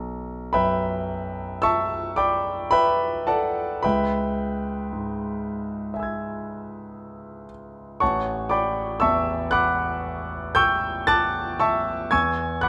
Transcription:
Already playing: B1
0.53 F#2 B4 E5 G5 B5
1.62 E5 A5 C#6 E6
2.16 D5 G5 B5 D6
2.71 B4 E5 G5 B5
3.27 A4 D5 F#5 A5
3.83 C#2 B4 E5 G5 B5
4.93 G#2
5.94 E5 G#5
6.00 E6 G#6
8.00 A1 C#5 F#5 A5 C#6
8.49 D5 G5 B5 D6
9.00 E2 E5 A5 C#6 E6
9.51 F#5 B5 D6 F#6
10.55 G5 C#6 E6 G6
11.07 A5 D6 F#6 A6
11.60 E5 A5 C#6 E6
12.11 E2 G#5 C#6 E6 G#6
12.61 F#5 B5 D6 F#6

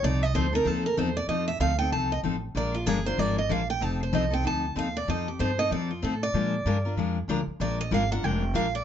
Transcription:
0.03 C2 F3 C4 D#4 A4 D5
0.23 D#5
0.34 D2 F3 C4 D#4 A4 C5
0.53 C4 D#4 A4 A#4
0.65 D#2 F3 C4 D#4 A4
0.86 A#4
0.97 E2 F3 C4 D#4 A4 C5
1.17 D5
1.28 F2 F3 C4 D#4 A4 D#5
1.48 E5
1.60 D2 F3 C4 D#4 A4 F5
1.79 C4 D#4 A4 G5
1.92 C2 F3 C4 D#4 A4 A5
2.12 D#5
2.23 A1 F3 C4 D#4 A4
2.55 A#1 F3 G#3 D4 F4 A#4 D5
2.75 F4
2.86 G1 F3 G#3 D4 F4 G#4 A#4
3.05 D4 F4 A#4 C5
3.18 G#1 F3 G#3 D4 F4 A#4 D5
3.38 D#5
3.49 A#1 F3 G#3 D4 F4 A#4 F5
3.70 G5
3.81 F1 F3 C4 D#4 A4 A5
4.03 C5
4.12 C2 F3 C4 D#4 A4 D#5
4.30 C4 D#4 A4 G5
4.44 D2 F3 C4 D#4 A4 A5
4.76 D#2 F3 C4 D#4 A4 F5
4.97 D5
5.08 F2 F3 C4 D#4 A4 D#5
5.28 G4
5.39 G2 F3 C4 D#4 A4 C5
5.58 C4 D#4 A4 D#5
5.71 F2 F3 C4 D#4 A4 D5
5.91 F4
6.02 A2 F3 C4 D#4 A4
6.23 D5
6.34 A#2 F3 G#3 D4 F4 A#4
6.65 G2 F3 G#3 D4 F4 A#4
6.85 D4 F4 A#4
6.96 F2 F3 G#3 D4 F4 A#4
7.28 D2 F3 G#3 D4 F4 A#4
7.47 muted upright bass stroke
7.60 A#1 F3 G#3 D4 F4 A#4 D5
7.81 D#5
7.91 G#1 F3 G#3 D4 F4 A#4 F5
8.11 D4 F4 A#4 F#5
8.23 F1 F3 G#3 D4 F4 A#4 G5
8.53 A#1 F3 G#3 D4 F4 A#4 F5
8.75 D5

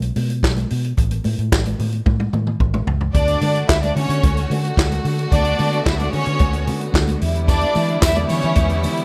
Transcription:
0.02 closed hi-hat, muted conga
0.16 B2, open hi-hat, high conga
0.30 closed hi-hat
0.43 B1, kick, snare, clap
0.57 closed hi-hat, muted conga, high conga
0.70 B2, open hi-hat
0.84 closed hi-hat
0.97 A1, kick, closed hi-hat, low conga
1.11 closed hi-hat, muted conga
1.24 A2, open hi-hat, high conga
1.39 A2, closed hi-hat
1.52 A1, kick, snare, clap
1.65 closed hi-hat, high conga
1.79 A2, open hi-hat, low conga
1.92 closed hi-hat
2.06 A2, kick, high tom, high conga
2.20 high tom, muted conga
2.33 A2, mid tom, high conga
2.47 mid tom
2.60 A1, kick, mid tom, muted conga
2.74 mid tom, high conga
2.87 C#2, floor tom
3.01 floor tom
3.14 D2 D3 A3 D4 F#4 D5, kick, closed hi-hat, muted conga, low conga
3.28 closed hi-hat
3.41 D3, open hi-hat, high conga
3.55 closed hi-hat
3.68 D2 E4 E5, kick, snare, clap
3.83 D4 D5, closed hi-hat, high conga
3.96 D3 C#4 C#5, open hi-hat, low conga
4.09 D3, closed hi-hat
4.23 D2, kick, closed hi-hat, muted conga, high conga
4.37 closed hi-hat, muted conga
4.50 D3, open hi-hat, high conga
4.65 closed hi-hat
4.77 D2, kick, snare, clap, muted conga
4.92 closed hi-hat, muted conga, high conga
5.05 D3, open hi-hat
5.19 closed hi-hat
5.32 D2 B3 D4 D5, kick, closed hi-hat, low conga
5.45 closed hi-hat
5.59 D3, open hi-hat, high conga
5.72 closed hi-hat
5.86 D2 E4 E5, kick, snare, clap, muted conga
5.99 D4 D5, closed hi-hat, high conga
6.12 D3 C#4 C#5, open hi-hat, low conga
6.26 D3, closed hi-hat
6.39 D2, kick, closed hi-hat, high conga
6.53 closed hi-hat, muted conga
6.67 D3, open hi-hat, high conga
6.81 closed hi-hat
6.94 D2, kick, snare, clap, muted conga
7.08 closed hi-hat, muted conga, high conga
7.21 E2 G3 B3 E4, open hi-hat
7.36 closed hi-hat
7.48 D4 D5, kick, closed hi-hat, tambourine, low conga
7.61 closed hi-hat, muted conga
7.75 E3, open hi-hat, tambourine, high conga
7.89 closed hi-hat
8.02 E2 E4 E5, kick, snare, clap, tambourine
8.15 D4 D5, closed hi-hat, high conga
8.29 E3 C#4 C#5, open hi-hat, tambourine, low conga
8.42 E3, closed hi-hat
8.55 E2, kick, closed hi-hat, tambourine, muted conga, high conga
8.69 closed hi-hat
8.83 E3, open hi-hat, tambourine, high conga
8.97 closed hi-hat

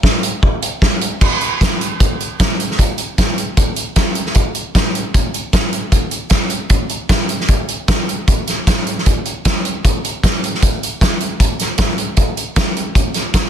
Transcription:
0.03 kick, snare
0.23 closed hi-hat
0.43 kick
0.62 closed hi-hat
0.82 kick, snare
1.01 closed hi-hat
1.21 kick, crash
1.41 closed hi-hat
1.61 kick, snare, closed hi-hat
1.81 closed hi-hat
2.00 kick, closed hi-hat
2.20 closed hi-hat
2.40 kick, snare, closed hi-hat
2.60 closed hi-hat
2.71 snare
2.79 kick, closed hi-hat
2.98 closed hi-hat
3.18 kick, snare, closed hi-hat
3.38 closed hi-hat
3.57 kick, closed hi-hat
3.76 closed hi-hat
3.96 kick, snare, closed hi-hat
4.15 closed hi-hat
4.26 snare
4.35 kick, closed hi-hat
4.55 closed hi-hat
4.75 kick, snare, closed hi-hat
4.95 closed hi-hat
5.14 kick, closed hi-hat
5.34 closed hi-hat
5.53 kick, snare, closed hi-hat
5.73 closed hi-hat
5.92 kick, closed hi-hat
6.11 closed hi-hat
6.30 kick, snare, closed hi-hat
6.50 closed hi-hat
6.70 kick, closed hi-hat
6.89 closed hi-hat
7.09 kick, snare, closed hi-hat
7.29 closed hi-hat
7.40 snare
7.48 kick, closed hi-hat
7.69 closed hi-hat
7.88 kick, snare, closed hi-hat
8.09 closed hi-hat
8.28 kick, closed hi-hat
8.47 snare, closed hi-hat
8.67 kick, snare, closed hi-hat
8.87 closed hi-hat
8.98 snare
9.06 kick, closed hi-hat
9.25 closed hi-hat
9.45 kick, snare, closed hi-hat
9.65 closed hi-hat
9.85 kick, closed hi-hat
10.05 closed hi-hat
10.23 kick, snare, closed hi-hat
10.44 closed hi-hat
10.54 snare
10.62 kick, closed hi-hat
10.83 closed hi-hat
11.01 kick, snare, closed hi-hat
11.21 closed hi-hat
11.40 kick, closed hi-hat
11.59 snare, closed hi-hat
11.78 kick, snare, closed hi-hat
11.98 closed hi-hat
12.17 kick, closed hi-hat
12.37 closed hi-hat
12.56 kick, snare, closed hi-hat
12.77 closed hi-hat
12.95 kick, closed hi-hat
13.14 snare, closed hi-hat
13.34 kick, snare, closed hi-hat

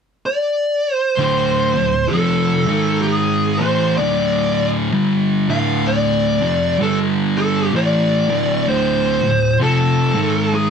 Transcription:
0.26 D5
0.94 C5
1.15 D2 A2 D3 C5
1.74 D2 A2
2.08 A4
2.13 F2 C3 F3
2.68 G#2 D#3 G#3
3.02 G#4
3.58 A2 E3 C5
3.62 A3
3.97 D2 A2 D3 D5
4.93 G2 D3 G3
5.49 D2 A2 D3 F5
5.87 D5
6.42 F2 C3 F3
6.80 G2 D3 G3 A4
7.37 A4
7.74 A2 E3 A3 D5
8.29 D2 A2 D3
8.67 D2 A2 D3 C5
9.23 D2 A2
9.60 F2 C3 F3 A4
10.15 G#2 D#3 G#3
10.54 G#4

